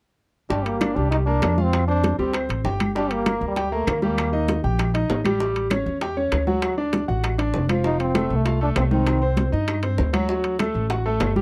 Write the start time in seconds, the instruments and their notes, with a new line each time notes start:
0.50 upright bass G1, grand piano G3 G4, trombone D4, high bongo, high conga
0.65 trombone A#3, high bongo, high conga, high timbale
0.81 grand piano D4 D5, high bongo, high conga, high timbale, claves
0.96 upright bass C2, grand piano G3 G4, trombone D4, high bongo, high conga
1.11 trombone D#4, high bongo, high conga, high timbale
1.26 grand piano A#3 A#4, trombone D4, high conga
1.42 upright bass F2, high bongo, low bongo, high conga, high timbale, low timbale, claves
1.58 grand piano F4 F5, high bongo, high conga
1.63 trombone C4
1.73 high bongo, high conga, high timbale, claves
1.88 grand piano C4 C5, trombone D4, high conga
2.04 high bongo, high conga, high timbale
2.19 upright bass D2, grand piano G3 G4, trombone C4, high bongo, high conga
2.33 grand piano C4 C5, high bongo, high conga, high timbale, claves
2.49 upright bass A1, high bongo, high conga, high timbale
2.64 upright bass G1, grand piano G4 G5, high bongo, low bongo, high conga
2.80 high bongo, high conga, high timbale, claves
2.95 grand piano G3 G4, trombone D4, high bongo
3.11 trombone A#3, high bongo, high conga, high timbale
3.26 grand piano A#3 A#4, high bongo, high conga, high timbale, claves
3.41 upright bass D2, high bongo, high conga
3.48 trombone G3
3.56 grand piano G4 G5, high bongo, high conga, high timbale
3.72 trombone A3, grand piano A#3 A#4, high conga
3.87 upright bass D#2, trombone A#3, high bongo, low bongo, high conga, high timbale, claves
4.02 grand piano G3 G4, trombone A#3, high bongo, high conga
4.17 high bongo, high conga, high timbale, claves
4.33 grand piano D#4 D#5, high conga
4.48 high bongo, high conga, high timbale
4.64 upright bass A#1, grand piano G4 G5, high bongo, high conga
4.79 high bongo, high conga, high timbale, claves
4.94 grand piano D#4 D#5, high bongo, high conga, high timbale
5.10 upright bass A1, high bongo, low bongo, high conga, low timbale
5.25 grand piano G3 G4, high bongo, high conga, high timbale, claves
5.40 grand piano G3 G4, high bongo
5.56 high bongo, high conga, high timbale
5.70 grand piano C#4 C#5, high bongo, high conga, high timbale, claves
5.86 upright bass E2, high bongo, high conga
6.01 grand piano G4 G5, high bongo, high conga, high timbale
6.17 grand piano C#4 C#5, high conga
6.32 upright bass D2, high bongo, low bongo, high conga, high timbale, claves
6.47 grand piano F#3 F#4, high bongo, high conga
6.62 high bongo, high conga, high timbale, claves
6.78 grand piano D4 D5, high conga
6.93 high bongo, high conga, high timbale
7.08 upright bass A1, grand piano F#4 F#5, high bongo, high conga
7.24 high bongo, high conga, high timbale, claves
7.38 grand piano D4 D5, high bongo, high conga, high timbale
7.54 upright bass F1, high bongo, low bongo, high conga
7.69 grand piano F3 F4, high bongo, high conga, high timbale, claves
7.84 grand piano F3 F4, trombone D#4, high bongo, high conga
8.00 trombone C4, high bongo, high conga, high timbale
8.14 grand piano A3 A4, high bongo, high conga, high timbale, claves
8.30 upright bass C2, high bongo, high conga
8.36 trombone A3
8.45 grand piano F4 F5, high bongo, high conga, high timbale
8.61 grand piano A3 A4, trombone D4, high conga
8.76 upright bass C2, trombone C4, high bongo, low bongo, high conga, high timbale, low timbale, claves
8.91 grand piano D#3 D#4, trombone C4, high bongo, high conga
9.07 high bongo, high timbale, claves
9.22 grand piano C4 C5, high conga
9.37 high bongo, high conga, high timbale
9.52 upright bass G2, grand piano D#4 D#5, high bongo, high conga
9.68 high bongo, high conga, high timbale, claves
9.83 grand piano C4 C5, high bongo, high conga, high timbale
9.98 upright bass D2, high bongo, low bongo, high conga
10.13 grand piano F#3 F#4, high bongo, high conga, high timbale, claves
10.29 grand piano F#3 F#4, high bongo, high conga
10.44 high bongo, high conga, high timbale
10.59 grand piano A3 A4, high bongo, high conga, high timbale, claves
10.74 upright bass A1, high bongo, high conga
10.90 grand piano F#4 F#5, high bongo, high conga, high timbale
11.06 grand piano A3 A4, high conga
11.20 upright bass G1, high bongo, low bongo, high conga, high timbale, low timbale, claves
11.36 grand piano G3 G4, high bongo, high conga